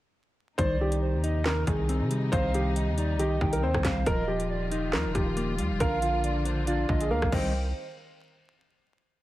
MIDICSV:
0, 0, Header, 1, 7, 480
1, 0, Start_track
1, 0, Key_signature, -3, "minor"
1, 0, Tempo, 434783
1, 646, Time_signature, 4, 2, 24, 8
1, 10184, End_track
2, 0, Start_track
2, 0, Title_t, "Soft synth lead"
2, 0, Program_c, 0, 80
2, 645, Note_on_c, 0, 74, 100
2, 1097, Note_off_c, 0, 74, 0
2, 1126, Note_on_c, 0, 72, 82
2, 1354, Note_off_c, 0, 72, 0
2, 1365, Note_on_c, 0, 75, 87
2, 1594, Note_off_c, 0, 75, 0
2, 2566, Note_on_c, 0, 77, 110
2, 3017, Note_off_c, 0, 77, 0
2, 3046, Note_on_c, 0, 75, 79
2, 3274, Note_off_c, 0, 75, 0
2, 3286, Note_on_c, 0, 74, 77
2, 3514, Note_off_c, 0, 74, 0
2, 3526, Note_on_c, 0, 75, 91
2, 3754, Note_off_c, 0, 75, 0
2, 3766, Note_on_c, 0, 79, 83
2, 4217, Note_off_c, 0, 79, 0
2, 4246, Note_on_c, 0, 77, 88
2, 4474, Note_off_c, 0, 77, 0
2, 4486, Note_on_c, 0, 75, 111
2, 4937, Note_off_c, 0, 75, 0
2, 4965, Note_on_c, 0, 74, 86
2, 5194, Note_off_c, 0, 74, 0
2, 5206, Note_on_c, 0, 75, 82
2, 5434, Note_off_c, 0, 75, 0
2, 6407, Note_on_c, 0, 77, 106
2, 6857, Note_off_c, 0, 77, 0
2, 6888, Note_on_c, 0, 74, 81
2, 7115, Note_off_c, 0, 74, 0
2, 7124, Note_on_c, 0, 72, 79
2, 7353, Note_off_c, 0, 72, 0
2, 7364, Note_on_c, 0, 74, 93
2, 7593, Note_off_c, 0, 74, 0
2, 7605, Note_on_c, 0, 75, 82
2, 7833, Note_off_c, 0, 75, 0
2, 7847, Note_on_c, 0, 77, 91
2, 8075, Note_off_c, 0, 77, 0
2, 8085, Note_on_c, 0, 75, 88
2, 8309, Note_off_c, 0, 75, 0
2, 10184, End_track
3, 0, Start_track
3, 0, Title_t, "Grand piano"
3, 0, Program_c, 1, 0
3, 638, Note_on_c, 1, 72, 108
3, 824, Note_off_c, 1, 72, 0
3, 896, Note_on_c, 1, 67, 81
3, 1568, Note_off_c, 1, 67, 0
3, 1606, Note_on_c, 1, 70, 94
3, 1789, Note_off_c, 1, 70, 0
3, 1856, Note_on_c, 1, 68, 84
3, 2528, Note_off_c, 1, 68, 0
3, 2559, Note_on_c, 1, 72, 105
3, 2745, Note_off_c, 1, 72, 0
3, 2811, Note_on_c, 1, 67, 79
3, 3485, Note_off_c, 1, 67, 0
3, 3525, Note_on_c, 1, 67, 91
3, 3871, Note_off_c, 1, 67, 0
3, 3896, Note_on_c, 1, 70, 82
3, 3981, Note_off_c, 1, 70, 0
3, 4012, Note_on_c, 1, 72, 92
3, 4461, Note_off_c, 1, 72, 0
3, 4492, Note_on_c, 1, 70, 110
3, 4673, Note_off_c, 1, 70, 0
3, 4720, Note_on_c, 1, 67, 85
3, 5400, Note_off_c, 1, 67, 0
3, 5444, Note_on_c, 1, 70, 91
3, 5628, Note_off_c, 1, 70, 0
3, 5683, Note_on_c, 1, 67, 80
3, 6361, Note_off_c, 1, 67, 0
3, 6410, Note_on_c, 1, 70, 108
3, 6591, Note_off_c, 1, 70, 0
3, 6644, Note_on_c, 1, 65, 75
3, 7322, Note_off_c, 1, 65, 0
3, 7367, Note_on_c, 1, 65, 84
3, 7712, Note_off_c, 1, 65, 0
3, 7742, Note_on_c, 1, 68, 80
3, 7825, Note_off_c, 1, 68, 0
3, 7849, Note_on_c, 1, 70, 85
3, 8073, Note_off_c, 1, 70, 0
3, 8085, Note_on_c, 1, 72, 82
3, 8309, Note_off_c, 1, 72, 0
3, 10184, End_track
4, 0, Start_track
4, 0, Title_t, "String section"
4, 0, Program_c, 2, 48
4, 646, Note_on_c, 2, 48, 85
4, 646, Note_on_c, 2, 63, 92
4, 4448, Note_off_c, 2, 48, 0
4, 4448, Note_off_c, 2, 63, 0
4, 4487, Note_on_c, 2, 51, 85
4, 4487, Note_on_c, 2, 65, 95
4, 6387, Note_off_c, 2, 51, 0
4, 6406, Note_on_c, 2, 50, 82
4, 6406, Note_on_c, 2, 58, 77
4, 8050, Note_off_c, 2, 65, 0
4, 8069, Note_off_c, 2, 50, 0
4, 8069, Note_off_c, 2, 58, 0
4, 8086, Note_on_c, 2, 51, 73
4, 8086, Note_on_c, 2, 67, 81
4, 8087, Note_on_c, 2, 60, 70
4, 8309, Note_off_c, 2, 51, 0
4, 8309, Note_off_c, 2, 67, 0
4, 8310, Note_off_c, 2, 60, 0
4, 10184, End_track
5, 0, Start_track
5, 0, Title_t, "Clean electric guitar"
5, 0, Program_c, 3, 27
5, 650, Note_on_c, 3, 51, 103
5, 872, Note_off_c, 3, 51, 0
5, 885, Note_on_c, 3, 51, 76
5, 1365, Note_on_c, 3, 63, 83
5, 1592, Note_off_c, 3, 51, 0
5, 1605, Note_on_c, 3, 51, 91
5, 1831, Note_off_c, 3, 51, 0
5, 1845, Note_on_c, 3, 51, 79
5, 2086, Note_on_c, 3, 60, 90
5, 2325, Note_on_c, 3, 55, 82
5, 2552, Note_off_c, 3, 51, 0
5, 2565, Note_on_c, 3, 51, 91
5, 2566, Note_off_c, 3, 63, 0
5, 2794, Note_off_c, 3, 51, 0
5, 2807, Note_on_c, 3, 51, 79
5, 3286, Note_off_c, 3, 60, 0
5, 3286, Note_on_c, 3, 63, 90
5, 3511, Note_off_c, 3, 51, 0
5, 3524, Note_on_c, 3, 51, 91
5, 3525, Note_off_c, 3, 55, 0
5, 3755, Note_off_c, 3, 51, 0
5, 3768, Note_on_c, 3, 51, 81
5, 4003, Note_on_c, 3, 60, 84
5, 4245, Note_on_c, 3, 55, 84
5, 4483, Note_off_c, 3, 55, 0
5, 4485, Note_off_c, 3, 60, 0
5, 4486, Note_off_c, 3, 63, 0
5, 4487, Note_off_c, 3, 51, 0
5, 4487, Note_on_c, 3, 53, 89
5, 4709, Note_off_c, 3, 53, 0
5, 4722, Note_on_c, 3, 53, 77
5, 5206, Note_on_c, 3, 63, 93
5, 5431, Note_off_c, 3, 53, 0
5, 5444, Note_on_c, 3, 53, 85
5, 5670, Note_off_c, 3, 53, 0
5, 5683, Note_on_c, 3, 53, 80
5, 5927, Note_on_c, 3, 58, 94
5, 6159, Note_off_c, 3, 58, 0
5, 6163, Note_on_c, 3, 55, 84
5, 6399, Note_off_c, 3, 53, 0
5, 6404, Note_on_c, 3, 50, 90
5, 6405, Note_off_c, 3, 55, 0
5, 6406, Note_off_c, 3, 63, 0
5, 6634, Note_off_c, 3, 50, 0
5, 6647, Note_on_c, 3, 50, 79
5, 7125, Note_on_c, 3, 62, 83
5, 7353, Note_off_c, 3, 50, 0
5, 7366, Note_on_c, 3, 50, 96
5, 7593, Note_off_c, 3, 50, 0
5, 7606, Note_on_c, 3, 50, 80
5, 7845, Note_on_c, 3, 58, 80
5, 8082, Note_off_c, 3, 50, 0
5, 8083, Note_on_c, 3, 51, 87
5, 8084, Note_off_c, 3, 58, 0
5, 8086, Note_off_c, 3, 62, 0
5, 8086, Note_on_c, 3, 55, 77
5, 8089, Note_on_c, 3, 60, 80
5, 8093, Note_on_c, 3, 63, 93
5, 8309, Note_off_c, 3, 51, 0
5, 8309, Note_off_c, 3, 55, 0
5, 8309, Note_off_c, 3, 60, 0
5, 8309, Note_off_c, 3, 63, 0
5, 10184, End_track
6, 0, Start_track
6, 0, Title_t, "808-style bass"
6, 0, Program_c, 4, 38
6, 646, Note_on_c, 4, 36, 103
6, 1254, Note_on_c, 4, 39, 101
6, 1270, Note_off_c, 4, 36, 0
6, 1817, Note_off_c, 4, 39, 0
6, 1847, Note_on_c, 4, 36, 108
6, 2214, Note_on_c, 4, 48, 102
6, 2230, Note_off_c, 4, 36, 0
6, 2549, Note_off_c, 4, 48, 0
6, 2566, Note_on_c, 4, 36, 110
6, 3174, Note_on_c, 4, 39, 104
6, 3191, Note_off_c, 4, 36, 0
6, 3470, Note_on_c, 4, 36, 100
6, 3487, Note_off_c, 4, 39, 0
6, 3751, Note_off_c, 4, 36, 0
6, 3767, Note_on_c, 4, 36, 105
6, 4006, Note_on_c, 4, 39, 107
6, 4023, Note_off_c, 4, 36, 0
6, 4127, Note_off_c, 4, 39, 0
6, 4133, Note_on_c, 4, 36, 99
6, 4239, Note_off_c, 4, 36, 0
6, 4246, Note_on_c, 4, 36, 102
6, 4476, Note_off_c, 4, 36, 0
6, 4486, Note_on_c, 4, 27, 107
6, 5446, Note_on_c, 4, 39, 102
6, 5463, Note_off_c, 4, 27, 0
6, 5573, Note_on_c, 4, 27, 97
6, 5590, Note_off_c, 4, 39, 0
6, 5680, Note_off_c, 4, 27, 0
6, 5687, Note_on_c, 4, 27, 110
6, 6166, Note_on_c, 4, 39, 103
6, 6183, Note_off_c, 4, 27, 0
6, 6293, Note_on_c, 4, 27, 100
6, 6310, Note_off_c, 4, 39, 0
6, 6400, Note_off_c, 4, 27, 0
6, 6406, Note_on_c, 4, 34, 108
6, 7562, Note_off_c, 4, 34, 0
6, 7606, Note_on_c, 4, 34, 106
6, 7846, Note_on_c, 4, 38, 102
6, 7863, Note_off_c, 4, 34, 0
6, 7967, Note_off_c, 4, 38, 0
6, 7974, Note_on_c, 4, 34, 104
6, 8082, Note_off_c, 4, 34, 0
6, 8086, Note_on_c, 4, 36, 107
6, 8533, Note_off_c, 4, 36, 0
6, 10184, End_track
7, 0, Start_track
7, 0, Title_t, "Drums"
7, 646, Note_on_c, 9, 36, 122
7, 646, Note_on_c, 9, 42, 79
7, 756, Note_off_c, 9, 36, 0
7, 756, Note_off_c, 9, 42, 0
7, 1014, Note_on_c, 9, 42, 74
7, 1124, Note_off_c, 9, 42, 0
7, 1366, Note_on_c, 9, 42, 77
7, 1476, Note_off_c, 9, 42, 0
7, 1607, Note_on_c, 9, 38, 113
7, 1609, Note_on_c, 9, 39, 93
7, 1718, Note_off_c, 9, 38, 0
7, 1720, Note_off_c, 9, 39, 0
7, 1846, Note_on_c, 9, 42, 75
7, 1847, Note_on_c, 9, 36, 101
7, 1956, Note_off_c, 9, 42, 0
7, 1957, Note_off_c, 9, 36, 0
7, 2087, Note_on_c, 9, 42, 81
7, 2197, Note_off_c, 9, 42, 0
7, 2326, Note_on_c, 9, 42, 99
7, 2436, Note_off_c, 9, 42, 0
7, 2566, Note_on_c, 9, 36, 119
7, 2567, Note_on_c, 9, 42, 81
7, 2677, Note_off_c, 9, 36, 0
7, 2677, Note_off_c, 9, 42, 0
7, 2808, Note_on_c, 9, 42, 76
7, 2918, Note_off_c, 9, 42, 0
7, 3047, Note_on_c, 9, 42, 88
7, 3158, Note_off_c, 9, 42, 0
7, 3286, Note_on_c, 9, 42, 79
7, 3396, Note_off_c, 9, 42, 0
7, 3527, Note_on_c, 9, 42, 87
7, 3637, Note_off_c, 9, 42, 0
7, 3767, Note_on_c, 9, 36, 99
7, 3877, Note_off_c, 9, 36, 0
7, 3895, Note_on_c, 9, 42, 85
7, 4005, Note_off_c, 9, 42, 0
7, 4133, Note_on_c, 9, 36, 93
7, 4134, Note_on_c, 9, 37, 97
7, 4244, Note_off_c, 9, 36, 0
7, 4245, Note_off_c, 9, 37, 0
7, 4245, Note_on_c, 9, 36, 110
7, 4246, Note_on_c, 9, 38, 117
7, 4246, Note_on_c, 9, 42, 87
7, 4248, Note_on_c, 9, 39, 93
7, 4356, Note_off_c, 9, 36, 0
7, 4356, Note_off_c, 9, 38, 0
7, 4356, Note_off_c, 9, 42, 0
7, 4358, Note_off_c, 9, 39, 0
7, 4486, Note_on_c, 9, 36, 118
7, 4486, Note_on_c, 9, 42, 81
7, 4596, Note_off_c, 9, 36, 0
7, 4596, Note_off_c, 9, 42, 0
7, 4854, Note_on_c, 9, 42, 74
7, 4964, Note_off_c, 9, 42, 0
7, 5205, Note_on_c, 9, 42, 83
7, 5316, Note_off_c, 9, 42, 0
7, 5447, Note_on_c, 9, 38, 116
7, 5449, Note_on_c, 9, 39, 95
7, 5557, Note_off_c, 9, 38, 0
7, 5559, Note_off_c, 9, 39, 0
7, 5685, Note_on_c, 9, 42, 76
7, 5687, Note_on_c, 9, 36, 98
7, 5796, Note_off_c, 9, 42, 0
7, 5797, Note_off_c, 9, 36, 0
7, 5926, Note_on_c, 9, 42, 80
7, 6037, Note_off_c, 9, 42, 0
7, 6166, Note_on_c, 9, 42, 93
7, 6276, Note_off_c, 9, 42, 0
7, 6406, Note_on_c, 9, 36, 118
7, 6406, Note_on_c, 9, 42, 81
7, 6516, Note_off_c, 9, 42, 0
7, 6517, Note_off_c, 9, 36, 0
7, 6647, Note_on_c, 9, 42, 81
7, 6758, Note_off_c, 9, 42, 0
7, 6887, Note_on_c, 9, 42, 83
7, 6997, Note_off_c, 9, 42, 0
7, 7125, Note_on_c, 9, 42, 80
7, 7236, Note_off_c, 9, 42, 0
7, 7366, Note_on_c, 9, 42, 85
7, 7477, Note_off_c, 9, 42, 0
7, 7607, Note_on_c, 9, 36, 98
7, 7717, Note_off_c, 9, 36, 0
7, 7734, Note_on_c, 9, 42, 83
7, 7845, Note_off_c, 9, 42, 0
7, 7974, Note_on_c, 9, 36, 91
7, 7975, Note_on_c, 9, 37, 98
7, 8084, Note_off_c, 9, 36, 0
7, 8085, Note_off_c, 9, 37, 0
7, 8086, Note_on_c, 9, 36, 110
7, 8086, Note_on_c, 9, 49, 87
7, 8197, Note_off_c, 9, 36, 0
7, 8197, Note_off_c, 9, 49, 0
7, 10184, End_track
0, 0, End_of_file